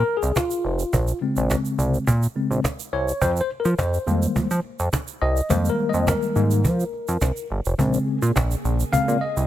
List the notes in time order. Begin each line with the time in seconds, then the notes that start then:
Already playing: A#4
0.08 cajon slap
0.17 G#4
0.23 C2, cajon slap, shaker
0.36 F4, cajon bass, cajon slap, shaker
0.51 cajon slap, shaker
0.65 F1, cajon slap
0.79 cajon slap, shaker
0.93 A#1, cajon bass, shaker
1.07 cajon slap, shaker
1.21 C#3 G#3 C4, cajon slap
1.36 A#1, shaker
1.50 cajon bass, cajon slap, shaker
1.65 cajon slap, shaker
1.78 C2, shaker
1.94 cajon slap, shaker
2.07 A#2, cajon bass, shaker
2.23 cajon slap, shaker
2.35 C#3 G#3 C4, cajon slap
2.51 A#1, cajon slap, shaker
2.64 cajon bass, cajon slap, shaker
2.79 cajon slap, shaker
2.93 C2 C#5, cajon slap
3.08 cajon slap, shaker
3.21 F2 C5, cajon bass, shaker
3.36 cajon slap, shaker
3.41 C5
3.50 cajon slap
3.60 A#4
3.65 F3, cajon slap, shaker
3.78 F2 C5, cajon bass, cajon slap, shaker
3.94 cajon slap, shaker
4.06 F2 D#3 G3 G#3 A#3, cajon slap, shaker
4.22 cajon slap, shaker
4.36 F3, cajon bass, shaker
4.51 F3, shaker
4.64 cajon slap
4.79 F2, cajon slap, shaker
4.93 cajon bass, cajon slap, shaker
5.07 cajon slap, shaker
5.22 C2 D#5, cajon slap
5.37 cajon slap, shaker
5.49 F2 D#3 G3 G#3 A#3 C5, cajon bass, shaker
5.65 shaker
5.69 A#4
5.79 cajon slap
5.89 D#5
5.94 F2, cajon slap, shaker
6.07 A#4, cajon bass, cajon slap, shaker
6.22 cajon slap, shaker
6.36 G#2 D#3 G3 G#3 A#3, cajon slap, shaker
6.51 cajon slap, shaker
6.65 F3, cajon bass, shaker
6.80 cajon slap, shaker
6.93 cajon slap
7.08 F2, shaker
7.21 C2, cajon bass, cajon slap, shaker
7.36 cajon slap, shaker
7.50 G1, cajon slap
7.65 F1, cajon slap, shaker
7.78 A#1 C#3 G#3 A#3 C4 G#4, cajon bass, shaker
7.94 shaker
8.08 cajon slap
8.22 A#2, shaker
8.36 A#1, cajon bass, cajon slap, shaker
8.51 cajon slap, shaker
8.64 A#1, cajon slap, shaker
8.80 cajon slap, shaker
8.92 A#2 C#3 G#3 C4 F5, cajon bass, shaker
9.08 A#2, shaker
9.21 D#5, cajon slap
9.36 C2, cajon slap, shaker